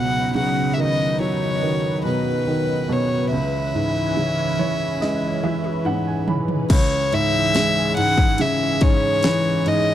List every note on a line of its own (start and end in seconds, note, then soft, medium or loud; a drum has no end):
0.00 2.85 C#2 medium
0.00 1.58 B2 soft
0.00 3.27 C#3 medium
0.00 3.28 F#3 medium
0.00 3.28 D#4 medium
0.00 6.66 B4 medium
0.00 0.34 F#5 medium
0.35 2.01 C#3 soft
0.35 0.75 F#5 medium
0.74 0.82 E5 medium
0.78 1.61 D#3 soft
0.78 1.21 D#5 medium
1.20 2.85 F#3 soft
1.20 2.02 C#5 medium
1.63 2.46 D#3 soft
2.05 2.88 B2 soft
2.05 2.94 B4 medium
2.48 3.29 D#3 soft
2.89 3.30 B2 medium
2.89 3.33 C#5 medium
3.32 6.66 C#2 soft
3.32 6.67 E3 medium
3.32 6.67 C#4 medium
3.32 6.25 E5 medium
3.75 5.39 G#2 soft
4.17 5.82 C#3 soft
4.59 5.42 E3 soft
4.59 4.98 C#5 medium
5.01 6.66 G#3 soft
5.01 5.40 D#5 soft
5.01 snare soft
5.43 6.27 E3 soft
5.43 5.83 E5 medium
5.43 high tom medium
5.64 high tom medium
5.85 6.68 G#2 soft
5.85 6.05 F#5 medium
5.85 mid tom medium
6.07 6.26 G#5 soft
6.28 6.69 E3 soft
6.28 6.67 B5 soft
6.28 floor tom medium
6.48 floor tom medium
6.69 9.94 C#2 medium
6.69 9.94 E3 medium
6.69 9.94 C#4 medium
6.69 9.94 G#4 medium
6.69 7.15 C#5 medium
6.69 kick loud
6.69 crash loud
6.69 ride medium
7.12 7.96 G#2 medium
7.12 7.97 E5 loud
7.12 ride medium
7.54 9.19 G#3 medium
7.54 snare loud
7.54 ride medium
7.97 8.81 G#2 medium
7.97 8.43 F#5 loud
7.97 ride medium
8.18 kick medium
8.38 9.94 C#3 medium
8.38 8.84 E5 medium
8.38 ride medium
8.81 9.65 G#2 medium
8.81 9.69 C#5 loud
8.81 kick loud
8.81 ride medium
9.23 9.94 E3 medium
9.23 snare loud
9.23 ride medium
9.66 9.94 G#2 medium
9.66 9.94 D#5 medium
9.66 ride medium